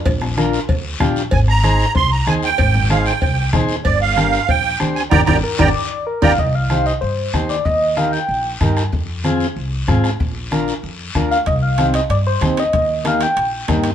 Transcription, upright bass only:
X:1
M:4/4
L:1/8
Q:1/4=189
K:Cm
V:1 name="Upright bass" clef=bass
B,,,4 D,,2 B,,,2 | A,,,4 C,,2 E,,2 | A,,,4 C,,2 E,,2 | G,,,4 B,,,2 D,,2 |
G,,, G,,, z G,,, z3 G,,, | C,,4 G,,2 E,,2 | E,,4 B,,,2 G,,2 | F,,4 C,,2 A,,2 |
B,,,4 F,,2 D,,2 | C,,4 G,,2 E,,2 | E,,4 B,,,2 G,,2 |]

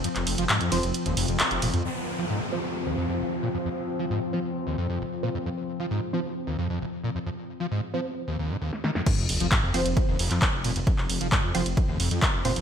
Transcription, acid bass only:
X:1
M:4/4
L:1/16
Q:1/4=133
K:Fm
V:1 name="Acid bass" clef=bass
F,, z2 F, A,, z F, z2 E,, F,, F,, F,,, z B,, F,, | F,, z2 F, A,, z F, z2 E,, F,, F,, F,,, z B,, F,, | F,, z2 F, A,, z F, z2 E,, F,, F,, F,,, z B,, F,, | F,, z2 F, A,, z F, z2 E,, F,, F,, F,,, z B,, F,, |
F,, z2 F, A,, z F, z2 E,, E,, A,, E,, z E, F,, | F,, z2 F, A,, z F, z2 E,, F,, F,, F,,, z B,, F,, | F,, z2 F, A,, z F, z2 E,, F,, F,, F,,, z B,, F,, |]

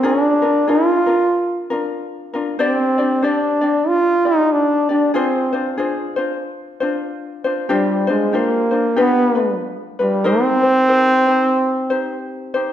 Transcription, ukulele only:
X:1
M:4/4
L:1/8
Q:"Swing" 1/4=94
K:Gphr
V:1 name="Ukulele"
[DFAB] [DFB] [DFAB] [DFB]2 [DFB]2 [DFB] | [DGcd] [DGd] [DGcd] [DGd]2 [Gd]2 [DGd] | [DFAc] [DFc] [DFAc] [DFc]2 [DFc]2 [DFc] | [DFGc] [DFc] [DFGc] [DFc] [DFG=B] [DFB]2 [DFB] |
[EGBc] [EGc] [EGBc] [EGc]2 [EGc]2 [EGc] |]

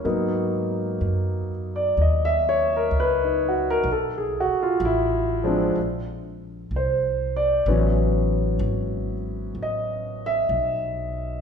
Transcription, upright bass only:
X:1
M:4/4
L:1/8
Q:"Swing" 1/4=63
K:G#m
V:1 name="Upright bass" clef=bass
G,,2 F,,2 D,,2 C,,2 | B,,, z =A,,,2 ^A,,,2 ^B,,,2 | =A,,,2 G,,,2 A,,,2 B,,,2 |]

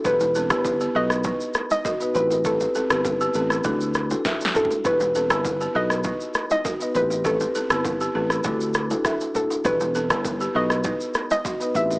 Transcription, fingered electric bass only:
X:1
M:4/4
L:1/16
Q:1/4=100
K:Bphr
V:1 name="Fingered electric bass" clef=bass
E,,,3 G,,,3 B,,,3 z4 z A,,,2- | A,,,2 z G,,,3 A,,,2 D,,4 z4 | E,,,3 G,,,3 B,,,3 z4 z A,,,2- | A,,,2 z G,,,3 A,,,2 D,,4 z4 |
E,,,3 G,,,3 B,,,3 z4 z A,,,2 |]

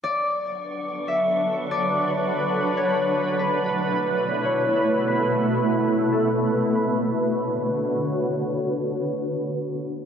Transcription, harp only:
X:1
M:4/4
L:1/8
Q:1/4=143
K:Bm
V:1 name="Harp"
d4- d e3 | d4- d c3 | B4- B c3 | B4- B A z2 |
B6 z2 | z8 |]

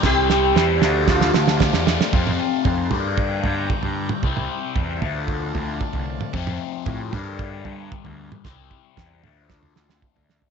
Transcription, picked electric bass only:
X:1
M:4/4
L:1/16
Q:1/4=114
K:Gdor
V:1 name="Picked electric bass" clef=bass
C,,4 E,,2 D,,4 D,,3 E,,2 z | F,,2 z2 F,,2 G,,4 G,,2 z G,,2 z | C,,2 z2 E,,2 D,,4 D,,2 z C,,2 z | F,,2 z2 A,,2 G,,4 G,,2 z D,,2 z |
C,,2 z2 E,,2 D,,4 D,,2 z D,,2 z |]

